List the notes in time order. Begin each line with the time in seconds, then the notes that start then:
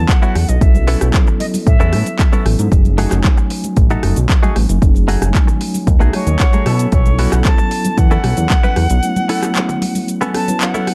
Already playing: F#3 B3 C#4 E4 A4 A5
0.09 F#5, kick, clap, closed hi-hat, muted conga, cabasa
0.22 B3 C#4 E4 F#4, closed hi-hat, high conga, cabasa
0.35 E2, cross-stick, open hi-hat
0.48 B1 D#5, muted clean electric guitar stroke, closed hi-hat, muted conga, cabasa
0.61 B1 F#3 B3 C#4 E4 A4 E5, kick, closed hi-hat, cabasa
0.74 closed hi-hat, muted conga, high conga, cabasa
0.88 B3 C#4 E4 A4, open hi-hat
1.00 B1 F#3 B3 C#4 E4 A4, cross-stick, closed hi-hat, cabasa
1.14 kick, clap, closed hi-hat, muted conga, high conga, cabasa
1.27 muted clean electric guitar stroke, closed hi-hat, low conga, cabasa
1.40 D#5, muted clean electric guitar stroke, open hi-hat, muted conga
1.54 open hi-hat, high conga, cabasa
1.66 A2 E5, kick, closed hi-hat, cabasa
1.80 E2 B3 C#4 E4 A4, closed hi-hat, muted conga, cabasa
1.93 A2, cross-stick, open hi-hat, high conga
2.06 closed hi-hat, muted conga, cabasa
2.19 kick, clap, closed hi-hat, cabasa
2.32 B3 C#4 E4 A4, closed hi-hat, high conga, cabasa
2.45 A1 F#3 B3 C#4 E4 A4, cross-stick, open hi-hat, muted conga
2.59 G#2, muted clean electric guitar stroke, closed hi-hat, cabasa
2.72 F#1 F#3 A3 C#4 D#4 G#4, kick, closed hi-hat, cabasa
2.85 closed hi-hat, high conga, cabasa
2.98 A3 D#4 F#4 G#4, open hi-hat, muted conga
3.10 F#1 F#3 A3 C#4 D#4 G#5, cross-stick, clap, closed hi-hat, cabasa
3.24 kick, clap, closed hi-hat, muted conga, high conga, cabasa
3.37 muted clean electric guitar stroke, closed hi-hat, cabasa
3.50 muted clean electric guitar stroke, open hi-hat
3.64 closed hi-hat, muted conga, high conga, cabasa
3.77 A1, kick, closed hi-hat, cabasa
3.90 A3 D#4 F#4 A4, closed hi-hat, muted conga, cabasa
4.03 F#1, cross-stick, open hi-hat, high conga
4.16 B1, closed hi-hat, low conga, cabasa
4.29 kick, clap, closed hi-hat, muted conga, cabasa
4.43 A3 D#4 F#4 G#4, closed hi-hat, high conga, cabasa
4.56 A1, cross-stick, open hi-hat, muted conga
4.69 F#1, muted clean electric guitar stroke, closed hi-hat, cabasa
4.82 F#1 F#3 A3 C#4 D#4 G#4, kick, closed hi-hat, cabasa
4.95 closed hi-hat, muted conga, high conga, cabasa
5.08 A3 D#4 F#4 G#4, open hi-hat
5.20 F#1 F#3 A3 C#4 D#4 G#5, cross-stick, closed hi-hat, muted conga, cabasa
5.35 kick, clap, closed hi-hat, high conga, cabasa
5.47 muted clean electric guitar stroke, closed hi-hat, low conga, cabasa
5.61 muted clean electric guitar stroke, open hi-hat, muted conga
5.74 open hi-hat, high conga, cabasa
5.87 D#2, kick, closed hi-hat, muted conga, cabasa
6.00 B1 A3 D#4 F#4 G#4, closed hi-hat, cabasa
6.13 C#5 D#5, cross-stick, open hi-hat, high conga
6.27 D#2, closed hi-hat, muted conga, cabasa
6.40 F#5, kick, clap, closed hi-hat, cabasa
6.53 A3 D#4 F#4 G#4, closed hi-hat, muted conga, high conga, cabasa
6.66 B2 F#3 B3 C#4 E4 A4 A5, cross-stick, open hi-hat
6.79 closed hi-hat, cabasa
6.92 B1 F#3 B3 C#4 E4 A4 C#5, kick, closed hi-hat, muted conga, cabasa
7.06 closed hi-hat, high conga, cabasa
7.19 B3 C#4 E4 F#4, open hi-hat, muted conga
7.31 B1 F#3 B3 C#4 E4 A4 F#5, cross-stick, clap, closed hi-hat, cabasa
7.45 A5, kick, clap, closed hi-hat, high conga, cabasa
7.58 muted clean electric guitar stroke, closed hi-hat, muted conga, cabasa
7.71 muted clean electric guitar stroke, open hi-hat
7.85 closed hi-hat, muted conga, high conga, cabasa
7.98 E2 F#5, kick, closed hi-hat, cabasa
8.11 B3 C#4 E4 A4, closed hi-hat, cabasa
8.24 B1, cross-stick, open hi-hat, muted conga, high conga
8.37 E2, closed hi-hat, low conga, cabasa
8.50 kick, clap, closed hi-hat, muted conga, cabasa
8.63 B3 C#4 E4 B4, closed hi-hat, high conga, cabasa
8.76 E2, cross-stick, open hi-hat
8.90 B1, muted clean electric guitar stroke, closed hi-hat, muted conga, cabasa
9.03 F#3 A3 B3 C#4 E4, closed hi-hat, cabasa
9.16 closed hi-hat, muted conga, high conga, cabasa
9.29 B3 C#4 E4 A4, open hi-hat
9.42 F#3 A3 B3 C#4 E4, cross-stick, clap, closed hi-hat, cabasa
9.56 clap, closed hi-hat, muted conga, high conga, cabasa
9.69 muted clean electric guitar stroke, closed hi-hat, low conga, cabasa
9.82 muted clean electric guitar stroke, open hi-hat, muted conga
9.95 open hi-hat, high conga, cabasa
10.08 closed hi-hat, cabasa
10.21 B3 C#4 E4 A4, closed hi-hat, muted conga, cabasa
10.34 F#3 B3 C#4 E4 A4 A5, cross-stick, open hi-hat, high conga
10.47 F#3 B3 C#4 E4 B4, closed hi-hat, muted conga, cabasa
10.61 F#5, clap, closed hi-hat, cabasa
10.74 B3 C#4 E4 A4, closed hi-hat, high conga, cabasa
10.87 cross-stick, open hi-hat, muted conga